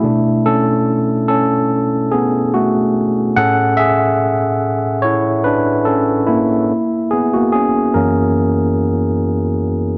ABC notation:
X:1
M:4/4
L:1/16
Q:"Swing 16ths" 1/4=72
K:A
V:1 name="Tine electric piano"
E2 [CA]4 [CA]4 [B,G]2 [A,F]3 z | [Af]2 [Ge]6 [Ec]2 [DB]2 [CA]2 [^A,E]2- | [^A,E]2 [B,G] [A,F] [CG]2 [C^A]8 z2 |]
V:2 name="Tine electric piano"
[B,,A,D]2 z12 z2 | [A,,CG]2 z12 z2 | z6 [F,,E,^A,]2 z8 |]